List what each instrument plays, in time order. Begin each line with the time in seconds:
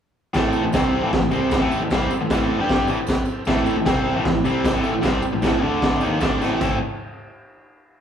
0.34 picked electric bass A1, overdriven electric guitar A2 E3 A3, transistor combo organ E4 A4, kick, snare, tambourine, crash
0.39 transistor combo organ C5
0.53 tambourine
0.64 picked electric bass A1, overdriven electric guitar A2 E3
0.72 picked electric bass C2, overdriven electric guitar C3 G3 C4, kick, snare, tambourine, crash
1.02 picked electric bass A1, overdriven electric guitar A2 E3
1.13 picked electric bass A1, overdriven electric guitar A2 E3, kick, snare, crash
1.21 picked electric bass A1, overdriven electric guitar A2 E3
1.30 picked electric bass C2, overdriven electric guitar C3 G3 C4, tambourine
1.51 kick, snare, tambourine, crash
1.60 picked electric bass A1, overdriven electric guitar A2 E3 A3
1.72 tambourine
1.80 picked electric bass A1, overdriven electric guitar A2 E3
1.91 picked electric bass C2, overdriven electric guitar C3 G3 C4, kick, snare, tambourine, crash
2.11 muted picked electric bass stroke, muted overdriven electric guitar stroke, tambourine
2.20 picked electric bass A1, overdriven electric guitar A2 E3
2.30 picked electric bass A1, overdriven electric guitar A2 E3 A3, kick, snare, tambourine, crash
2.59 picked electric bass G2, overdriven electric guitar G3 D4 G4
2.69 kick, snare, crash
2.88 picked electric bass A1, overdriven electric guitar A2 E3, tambourine
3.07 kick, snare, tambourine, crash
3.25 tambourine
3.45 picked electric bass A1, overdriven electric guitar A2 E3 A3, transistor combo organ E4, kick, snare, tambourine, crash
3.49 transistor combo organ A4 C5
3.66 tambourine
3.77 picked electric bass A1, overdriven electric guitar A2 E3
3.86 picked electric bass C2, overdriven electric guitar C3 G3 C4, kick, snare, tambourine, crash
4.15 picked electric bass A1, overdriven electric guitar A2 E3
4.25 picked electric bass A1, overdriven electric guitar A2 E3, kick, snare, crash
4.35 picked electric bass A1, overdriven electric guitar A2 E3
4.44 picked electric bass C2, overdriven electric guitar C3 G3 C4, tambourine
4.65 kick, snare, tambourine, crash
4.74 picked electric bass A1, overdriven electric guitar A2 E3 A3
4.84 tambourine
4.94 picked electric bass A1, overdriven electric guitar A2 E3
5.02 picked electric bass C2, overdriven electric guitar C3 G3 C4, kick, snare, tambourine, crash
5.22 muted overdriven electric guitar stroke, muted picked electric bass stroke, tambourine
5.33 picked electric bass A1, overdriven electric guitar A2 E3
5.42 picked electric bass A1, overdriven electric guitar A2 E3 A3, kick, snare, tambourine, crash
5.61 picked electric bass D2, overdriven electric guitar D3 A3 D4, transistor combo organ D4 A4 D5
5.81 kick, snare, tambourine, crash
6.00 picked electric bass D#2, overdriven electric guitar D#3 A#3 D#4, transistor combo organ E4 A4 C5, tambourine
6.20 picked electric bass D2, overdriven electric guitar D3 A3 D4, kick, snare, tambourine, crash
6.40 picked electric bass A1, overdriven electric guitar A2 E3 A3, snare, tambourine
6.60 picked electric bass A1, overdriven electric guitar A2 E3 A3 C4 E4, transistor combo organ E4 A4 C5, kick, crash, tambourine